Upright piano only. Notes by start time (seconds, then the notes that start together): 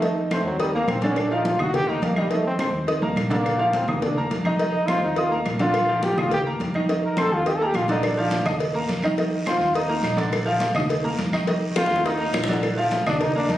0.03 D#3 D#4 D#5
0.32 C4 C5 C6
0.60 D#4 D#5 D#6
0.75 A#3 A#4 A#5
1.04 D3 D4 D5
1.31 F3 F4 F5
1.59 D#4 D#5 D#6
1.89 A#3 A#4 A#5
2.17 D#3 D#4 D#5
2.31 D#3 D#4 D#5
2.59 C4 C5 C6
2.87 D#4 D#5 D#6
3.02 A#3 A#4 A#5
3.30 D3 D4 D5
3.58 F3 F4 F5
3.88 D#4 D#5 D#6
4.17 A#3 A#4 A#5
4.45 D#3 D#4 D#5
4.60 D#3 D#4 D#5
4.89 C4 C5 C6
5.17 D#4 D#5 D#6
5.31 A#3 A#4 A#5
5.60 D3 D4 D5
5.89 F3 F4 F5
6.17 D#4 D#5 D#6
6.46 A#3 A#4 A#5
6.75 D#3 D#4 D#5
6.89 D#3 D#4 D#5
7.17 C4 C5 C6
7.47 D#4 D#5 D#6
7.61 A#3 A#4 A#5
7.89 D3 D4 D5
8.18 F3 F4 F5
8.45 D#4 D#5 D#6
8.74 A#3 A#4 A#5
9.04 D#3 D#4 D#5
9.18 D#3 D#4 D#5
9.47 C4 C5 C6
9.75 D#4 D#5 D#6
9.89 A#3 A#4 A#5
10.17 D3 D4 D5
10.46 F3 F4 F5
10.75 D#4 D#5 D#6
11.04 A#3 A#4 A#5
11.33 D#3 D#4 D#5
11.47 D#3 D#4 D#5
11.77 C4 C5 C6
12.05 D#4 D#5 D#6
12.20 A#3 A#4 A#5
12.48 D3 D4 D5
12.77 F3 F4 F5
13.06 D#4 D#5 D#6
13.35 A#3 A#4 A#5